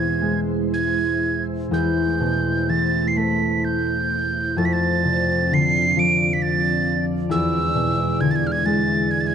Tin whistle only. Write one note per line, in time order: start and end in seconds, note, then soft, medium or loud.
0.00 0.40 G#6 medium
0.74 1.44 G#6 medium
1.74 2.71 G6 medium
2.70 3.09 A6 medium
3.08 3.19 C7 medium
3.17 3.66 B6 medium
3.65 4.60 G6 medium
4.58 4.67 A6 medium
4.65 4.74 B6 medium
4.73 5.55 A6 medium
5.54 6.01 C7 loud
5.99 6.35 D7 medium
6.33 6.44 B6 medium
6.42 7.05 A6 loud
7.31 8.22 E6 loud
8.21 8.32 G#6 loud
8.31 8.37 A6 medium
8.36 8.48 G#6 loud
8.47 8.53 F6 medium
8.52 8.67 G#6 loud
8.66 9.12 A6 loud
9.11 9.22 G#6 loud
9.21 9.28 A6 medium
9.27 9.35 G#6 loud